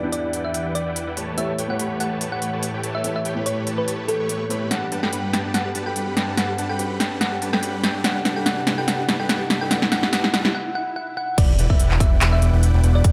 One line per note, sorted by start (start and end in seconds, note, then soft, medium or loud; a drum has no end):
0.00 1.14 E2 medium
0.00 1.19 E3 medium
0.00 4.67 E3 medium
0.00 0.03 B3 medium
0.00 1.15 B3 medium
0.00 0.04 D4 medium
0.00 1.16 D4 medium
0.00 0.10 E4 medium
0.00 0.05 G4 medium
0.00 4.67 G4 medium
0.00 0.10 B4 medium
0.00 1.14 D5 medium
0.00 0.10 D5 medium
0.00 1.14 F#5 medium
0.00 0.10 F#5 medium
0.00 0.10 G5 loud
0.00 riser medium
0.05 1.17 G4 medium
0.12 0.31 E4 medium
0.12 0.31 B4 medium
0.12 0.33 D5 medium
0.12 0.31 D5 medium
0.12 0.31 F#5 medium
0.12 0.31 G5 loud
0.12 closed hi-hat medium
0.33 0.52 E4 medium
0.33 0.52 B4 medium
0.33 0.52 D5 medium
0.33 0.52 F#5 medium
0.33 0.52 G5 medium
0.33 closed hi-hat medium
0.45 0.66 E5 medium
0.54 0.73 E4 medium
0.54 0.73 B4 medium
0.54 0.73 D5 medium
0.54 0.73 F#5 medium
0.54 0.73 G5 loud
0.54 closed hi-hat medium
0.75 0.84 E4 medium
0.75 0.84 B4 medium
0.75 1.30 D5 loud
0.75 0.84 D5 medium
0.75 0.84 F#5 medium
0.75 0.84 G5 medium
0.75 closed hi-hat medium
0.86 1.05 E4 medium
0.86 1.05 B4 medium
0.86 1.05 D5 medium
0.86 1.05 F#5 medium
0.86 1.04 G5 medium
0.96 closed hi-hat medium
1.07 1.15 E4 medium
1.07 1.14 B4 medium
1.07 1.15 D5 medium
1.07 1.15 F#5 medium
1.07 1.14 G5 loud
1.17 4.67 A2 medium
1.17 1.35 A3 medium
1.17 1.35 G4 medium
1.17 8.00 B4 medium
1.17 1.35 B4 medium
1.17 4.67 C#5 medium
1.17 1.35 C#5 medium
1.17 1.35 A5 loud
1.17 closed hi-hat medium
1.37 1.66 A3 medium
1.37 1.52 A3 medium
1.37 1.67 E4 medium
1.37 1.52 G4 medium
1.37 1.67 G4 medium
1.37 1.52 B4 medium
1.37 1.52 C#5 medium
1.37 1.68 C#5 medium
1.37 1.59 E5 loud
1.37 1.52 A5 medium
1.37 closed hi-hat medium
1.59 1.67 A3 loud
1.59 1.67 G4 medium
1.59 1.67 B4 medium
1.59 1.67 C#5 medium
1.59 1.67 G5 loud
1.59 closed hi-hat medium
1.68 3.01 A3 medium
1.68 1.77 A3 medium
1.68 3.02 E4 medium
1.68 1.77 G4 medium
1.68 3.02 G4 medium
1.68 1.77 B4 medium
1.68 1.77 C#5 medium
1.68 3.03 C#5 medium
1.68 1.91 F#5 medium
1.68 1.77 B5 loud
1.79 1.98 A3 medium
1.79 1.98 G4 medium
1.79 1.98 B4 medium
1.79 1.98 C#5 medium
1.79 1.98 B5 loud
1.79 closed hi-hat medium
2.00 2.19 A3 medium
2.00 2.19 G4 medium
2.00 2.19 B4 medium
2.00 2.19 C#5 medium
2.00 2.21 F#5 medium
2.00 2.19 A5 medium
2.00 closed hi-hat medium
2.21 2.40 A3 medium
2.21 2.40 G4 medium
2.21 2.40 B4 medium
2.21 2.40 C#5 medium
2.21 2.40 A5 loud
2.21 closed hi-hat medium
2.32 2.53 F#5 loud
2.42 2.50 A3 medium
2.42 2.50 G4 medium
2.42 2.50 B4 medium
2.42 2.50 C#5 medium
2.42 2.50 B5 medium
2.42 closed hi-hat medium
2.53 2.71 A3 medium
2.53 2.71 G4 medium
2.53 2.71 B4 medium
2.53 2.71 C#5 medium
2.53 2.71 A5 medium
2.63 closed hi-hat medium
2.74 2.81 A3 medium
2.74 2.81 G4 medium
2.74 2.81 B4 medium
2.74 2.81 C#5 medium
2.74 2.81 G5 loud
2.83 3.02 A3 medium
2.83 3.02 G4 medium
2.83 3.02 B4 medium
2.83 3.02 C#5 medium
2.83 3.02 A5 loud
2.83 closed hi-hat medium
2.95 3.08 E5 medium
3.04 3.33 A3 medium
3.04 3.19 A3 medium
3.04 3.34 E4 medium
3.04 3.19 G4 medium
3.04 3.34 G4 medium
3.04 3.19 B4 medium
3.04 3.19 C#5 medium
3.04 3.34 C#5 medium
3.04 3.19 A5 medium
3.04 closed hi-hat medium
3.16 3.37 E5 loud
3.25 3.34 A3 medium
3.25 3.34 G4 medium
3.25 3.34 B4 medium
3.25 3.34 C#5 medium
3.25 3.34 G5 loud
3.25 closed hi-hat medium
3.35 4.47 A3 medium
3.35 3.44 A3 medium
3.35 4.48 E4 medium
3.35 3.44 G4 medium
3.35 4.49 G4 medium
3.35 3.44 B4 medium
3.35 3.44 C#5 medium
3.35 3.44 B5 loud
3.39 4.49 C#5 medium
3.46 3.65 A3 medium
3.46 3.65 G4 medium
3.46 3.65 B4 medium
3.46 3.65 C#5 medium
3.46 3.67 C#5 medium
3.46 3.65 B5 loud
3.46 closed hi-hat medium
3.67 3.85 A3 medium
3.67 3.85 G4 medium
3.67 3.85 B4 medium
3.67 3.85 C#5 medium
3.67 3.85 A5 medium
3.67 closed hi-hat medium
3.78 3.99 B4 loud
3.88 4.06 A3 medium
3.88 4.06 G4 medium
3.88 4.06 B4 medium
3.88 4.06 C#5 medium
3.88 4.06 A5 loud
3.88 closed hi-hat medium
4.08 4.17 A3 medium
4.08 4.17 G4 medium
4.08 4.63 A4 loud
4.08 4.17 B4 medium
4.08 4.17 C#5 medium
4.08 4.17 G5 medium
4.08 closed hi-hat medium
4.20 4.28 A3 medium
4.20 4.28 G4 medium
4.20 4.28 B4 medium
4.20 4.28 C#5 medium
4.20 4.28 C#6 medium
4.29 4.44 A3 medium
4.29 4.44 G4 medium
4.29 4.44 B4 medium
4.29 4.44 C#5 medium
4.29 4.44 C#6 medium
4.29 closed hi-hat medium
4.49 4.68 A3 medium
4.49 4.69 A3 medium
4.49 4.69 E4 medium
4.49 4.69 G4 medium
4.49 4.69 B4 medium
4.49 4.69 C#5 medium
4.49 4.69 B5 medium
4.49 closed hi-hat medium
4.71 8.01 G2 medium
4.71 10.50 G3 medium
4.71 4.86 G3 medium
4.71 4.81 D4 medium
4.71 8.01 F#4 medium
4.71 4.86 G4 medium
4.71 10.50 A4 medium
4.71 4.86 B4 medium
4.71 4.92 F#5 medium
4.71 4.86 F#5 medium
4.71 4.86 A5 medium
4.71 snare soft
4.71 closed hi-hat medium
4.82 4.86 G4 loud
4.92 5.00 G3 medium
4.92 5.02 D4 medium
4.92 5.01 G4 medium
4.92 5.01 B4 medium
4.92 5.00 F#5 medium
4.92 5.00 A5 medium
4.92 closed hi-hat medium
5.03 5.11 G3 medium
5.03 5.11 G4 medium
5.03 5.07 A4 medium
5.03 5.10 B4 medium
5.03 5.11 F#5 medium
5.03 5.24 G5 medium
5.03 5.11 B5 medium
5.03 snare soft
5.13 5.31 G3 medium
5.13 5.19 D4 medium
5.13 5.31 G4 medium
5.13 5.31 B4 medium
5.13 5.31 F#5 medium
5.13 5.31 B5 medium
5.13 closed hi-hat medium
5.24 5.30 G4 medium
5.33 5.52 G3 medium
5.33 5.40 D4 medium
5.33 5.52 G4 medium
5.33 5.52 B4 medium
5.33 5.52 F#5 medium
5.33 5.53 G5 medium
5.33 5.52 A5 medium
5.33 snare medium
5.33 closed hi-hat medium
5.45 5.50 D4 medium
5.54 5.69 G3 medium
5.54 5.64 D4 medium
5.54 5.69 G4 medium
5.54 5.69 B4 medium
5.54 5.75 F#5 medium
5.54 5.69 F#5 medium
5.54 5.69 A5 medium
5.54 snare soft
5.54 closed hi-hat medium
5.66 5.69 G4 loud
5.75 5.84 G3 loud
5.75 5.85 D4 medium
5.75 5.84 G4 medium
5.75 5.84 B4 medium
5.75 5.84 F#5 medium
5.75 5.84 A5 loud
5.75 closed hi-hat medium
5.86 5.94 G3 medium
5.86 5.94 G4 medium
5.86 5.90 A4 medium
5.86 5.94 B4 medium
5.86 5.94 F#5 medium
5.86 6.07 G5 medium
5.86 5.94 B5 medium
5.96 6.15 G3 medium
5.96 6.03 D4 medium
5.96 6.14 G4 medium
5.96 6.15 B4 medium
5.96 6.15 F#5 medium
5.96 6.15 B5 loud
5.96 closed hi-hat medium
6.07 6.13 G4 medium
6.17 6.35 G3 medium
6.17 6.24 D4 medium
6.17 6.35 G4 medium
6.17 6.35 B4 medium
6.17 6.35 F#5 medium
6.17 6.36 G5 medium
6.17 6.35 A5 medium
6.17 snare medium
6.17 closed hi-hat medium
6.28 6.34 D4 medium
6.37 6.52 G3 medium
6.37 6.48 D4 medium
6.37 6.52 G4 medium
6.37 6.52 B4 medium
6.37 6.59 F#5 medium
6.37 6.52 F#5 medium
6.37 6.52 A5 medium
6.37 snare medium
6.37 closed hi-hat medium
6.49 6.52 G4 loud
6.58 6.67 G3 medium
6.58 6.69 D4 medium
6.58 6.67 G4 medium
6.58 6.67 B4 medium
6.58 6.67 F#5 medium
6.58 6.67 A5 loud
6.58 closed hi-hat medium
6.69 6.77 G3 medium
6.69 6.77 G4 medium
6.69 6.73 A4 loud
6.69 6.77 B4 medium
6.69 6.77 F#5 medium
6.69 6.91 G5 medium
6.69 6.77 B5 loud
6.79 6.98 G3 medium
6.79 6.86 D4 medium
6.79 6.98 G4 medium
6.79 6.98 B4 medium
6.79 6.98 F#5 medium
6.79 6.98 B5 loud
6.79 closed hi-hat medium
6.91 6.96 G4 medium
7.00 7.19 G3 medium
7.00 7.07 D4 medium
7.00 7.19 G4 medium
7.00 7.19 B4 medium
7.00 7.19 F#5 medium
7.00 7.19 G5 medium
7.00 7.19 A5 medium
7.00 snare medium
7.00 closed hi-hat medium
7.12 7.17 D4 medium
7.21 7.36 G3 medium
7.21 7.31 D4 medium
7.21 7.36 G4 medium
7.21 7.36 B4 medium
7.21 7.42 F#5 medium
7.21 7.36 F#5 medium
7.21 7.36 A5 medium
7.21 snare medium
7.21 closed hi-hat medium
7.32 7.36 G4 loud
7.42 7.50 G3 loud
7.42 7.52 D4 medium
7.42 7.50 G4 medium
7.42 7.50 B4 medium
7.42 7.50 F#5 medium
7.42 7.50 A5 loud
7.42 closed hi-hat medium
7.53 7.60 G3 medium
7.53 7.60 G4 medium
7.53 7.57 A4 medium
7.53 7.60 B4 medium
7.53 7.60 F#5 medium
7.53 7.74 G5 medium
7.53 7.60 B5 medium
7.53 snare medium
7.63 7.81 G3 medium
7.63 7.69 D4 medium
7.63 7.81 G4 medium
7.63 7.81 B4 medium
7.63 7.81 F#5 medium
7.63 7.81 B5 loud
7.63 closed hi-hat medium
7.74 7.80 G4 medium
7.83 8.02 G3 medium
7.83 7.90 D4 medium
7.83 8.02 G4 medium
7.83 8.02 B4 medium
7.83 8.02 F#5 medium
7.83 8.03 G5 loud
7.83 8.02 A5 medium
7.83 snare medium
7.83 closed hi-hat medium
7.95 8.00 D4 medium
8.04 10.52 C3 medium
8.04 8.19 G3 medium
8.04 8.14 D4 medium
8.04 10.52 E4 medium
8.04 8.19 G4 medium
8.04 8.19 B4 medium
8.04 10.52 D5 medium
8.04 8.19 F#5 medium
8.04 8.25 F#5 loud
8.04 8.19 A5 medium
8.04 snare medium
8.04 closed hi-hat medium
8.16 8.19 G4 loud
8.25 8.34 G3 medium
8.25 8.35 D4 medium
8.25 8.34 G4 medium
8.25 8.34 B4 medium
8.25 8.34 F#5 medium
8.25 8.34 A5 loud
8.25 snare medium
8.25 closed hi-hat medium
8.36 8.44 G3 medium
8.36 8.44 G4 medium
8.36 8.40 A4 loud
8.36 8.44 B4 medium
8.36 8.44 F#5 medium
8.36 8.44 G5 medium
8.36 8.44 B5 loud
8.46 8.61 G3 medium
8.46 8.56 D4 medium
8.46 8.61 G4 medium
8.46 8.61 B4 medium
8.46 8.67 F#5 medium
8.46 8.61 F#5 medium
8.46 8.61 A5 medium
8.46 snare medium
8.46 closed hi-hat medium
8.57 8.61 G4 loud
8.67 8.75 G3 medium
8.67 8.77 D4 medium
8.67 8.75 G4 medium
8.67 8.75 B4 medium
8.67 8.75 F#5 medium
8.67 8.75 A5 loud
8.67 snare medium
8.67 closed hi-hat medium
8.78 8.85 G3 medium
8.78 8.85 G4 medium
8.78 8.82 A4 loud
8.78 8.85 B4 medium
8.78 8.85 F#5 medium
8.78 8.86 G5 loud
8.78 8.85 B5 loud
8.87 9.02 G3 medium
8.87 8.98 D4 medium
8.87 9.02 G4 medium
8.87 9.02 B4 medium
8.87 9.02 F#5 medium
8.87 9.09 F#5 loud
8.87 9.02 A5 medium
8.87 snare medium
8.87 closed hi-hat medium
8.99 9.02 G4 loud
9.08 9.17 G3 loud
9.08 9.19 D4 medium
9.08 9.17 G4 medium
9.08 9.17 B4 medium
9.08 9.17 F#5 medium
9.08 9.17 A5 loud
9.08 snare medium
9.08 closed hi-hat medium
9.20 9.27 G3 medium
9.20 9.27 G4 medium
9.20 9.23 A4 loud
9.20 9.27 B4 medium
9.20 9.27 F#5 medium
9.20 9.28 G5 medium
9.20 9.27 B5 medium
9.29 9.44 G3 medium
9.29 9.39 D4 medium
9.29 9.44 G4 medium
9.29 9.44 B4 medium
9.29 9.44 F#5 medium
9.29 9.50 F#5 loud
9.29 9.44 A5 medium
9.29 snare medium
9.29 closed hi-hat medium
9.41 9.44 G4 loud
9.50 9.59 G3 loud
9.50 9.60 D4 medium
9.50 9.59 G4 medium
9.50 9.59 B4 medium
9.50 9.59 F#5 medium
9.50 9.59 A5 loud
9.50 snare medium
9.50 closed hi-hat medium
9.61 9.69 G3 medium
9.61 9.69 G4 medium
9.61 9.65 A4 loud
9.61 9.69 B4 medium
9.61 9.69 F#5 medium
9.61 9.69 G5 loud
9.61 9.69 B5 loud
9.71 9.86 G3 medium
9.71 9.81 D4 medium
9.71 9.86 G4 medium
9.71 9.86 B4 medium
9.71 9.86 F#5 medium
9.71 9.90 F#5 loud
9.71 9.86 A5 medium
9.71 snare loud
9.71 closed hi-hat medium
9.82 9.86 G4 loud
9.82 snare medium
9.92 10.06 G3 medium
9.92 10.02 D4 medium
9.92 10.07 G4 medium
9.92 10.06 B4 medium
9.92 10.06 F#5 medium
9.92 10.11 F#5 loud
9.92 10.06 A5 medium
9.92 snare medium
9.92 closed hi-hat medium
10.03 10.07 G4 loud
10.03 snare medium
10.13 10.27 G3 medium
10.13 10.23 D4 medium
10.13 10.27 G4 medium
10.13 10.27 B4 medium
10.13 10.32 F#5 loud
10.13 10.27 F#5 medium
10.13 10.27 A5 medium
10.13 snare loud
10.13 closed hi-hat medium
10.24 10.27 G4 loud
10.24 snare medium
10.34 10.48 G3 medium
10.34 10.44 D4 medium
10.34 10.48 G4 medium
10.34 10.48 B4 medium
10.34 10.53 F#5 medium
10.34 10.48 F#5 medium
10.34 10.48 A5 medium
10.34 snare loud
10.34 closed hi-hat medium
10.45 10.48 G4 loud
10.45 snare medium
10.54 10.74 F#5 loud
10.54 swell medium
10.75 10.95 F#5 loud
10.96 11.15 F#5 loud
11.17 11.36 F#5 loud
11.38 11.57 E1 loud
11.38 13.12 E3 medium
11.38 13.12 B3 medium
11.38 13.12 D4 medium
11.38 11.52 E4 medium
11.38 13.12 F#4 medium
11.38 13.12 G4 medium
11.38 11.53 B4 medium
11.38 11.53 D5 medium
11.38 11.59 D5 loud
11.38 11.53 F#5 medium
11.38 11.53 G5 medium
11.38 kick loud
11.38 closed hi-hat medium
11.38 crash loud
11.38 impact medium
11.59 11.68 E1 loud
11.59 11.67 E4 loud
11.59 11.67 B4 medium
11.59 11.67 D5 medium
11.59 11.67 F#5 medium
11.59 11.67 G5 loud
11.59 closed hi-hat medium
11.70 11.78 E1 loud
11.70 11.77 E4 medium
11.70 11.77 B4 medium
11.70 11.77 D5 medium
11.70 11.91 E5 medium
11.70 11.77 F#5 medium
11.70 11.77 G5 loud
11.70 kick medium
11.79 11.98 E1 loud
11.79 11.98 E4 medium
11.79 11.98 B4 medium
11.79 11.98 D5 medium
11.79 11.98 F#5 medium
11.79 11.98 G5 loud
11.79 closed hi-hat medium
11.91 clap soft
12.00 12.19 E1 loud
12.00 12.19 E4 medium
12.00 12.19 B4 medium
12.00 12.19 D5 medium
12.00 12.21 E5 medium
12.00 12.19 F#5 medium
12.00 12.19 G5 loud
12.00 kick loud
12.00 closed hi-hat medium
12.21 12.40 E1 medium
12.21 12.40 E4 medium
12.21 12.40 B4 medium
12.21 12.40 D5 medium
12.21 12.40 F#5 medium
12.21 12.40 G5 loud
12.21 clap loud
12.21 closed hi-hat medium
12.33 12.53 E5 loud
12.42 12.51 E1 loud
12.42 12.50 E4 medium
12.42 12.50 B4 medium
12.42 12.50 D5 medium
12.42 12.50 F#5 medium
12.42 12.50 G5 medium
12.42 closed hi-hat medium
12.53 12.72 E1 medium
12.53 12.71 E4 medium
12.53 12.71 B4 medium
12.53 12.71 D5 medium
12.53 12.71 F#5 medium
12.53 12.71 G5 medium
12.63 closed hi-hat medium
12.74 12.82 E1 medium
12.74 12.81 E4 medium
12.74 12.81 B4 medium
12.74 12.81 D5 medium
12.74 12.81 F#5 medium
12.74 12.81 G5 loud
12.83 13.02 E1 medium
12.83 13.02 E4 medium
12.83 13.02 B4 medium
12.83 13.02 D5 medium
12.83 13.02 F#5 medium
12.83 13.02 G5 loud
12.83 closed hi-hat medium
12.95 13.08 D5 medium
13.04 13.12 E1 loud
13.04 13.12 E4 medium
13.04 13.12 B4 medium
13.04 13.12 D5 medium
13.04 kick loud
13.04 closed hi-hat medium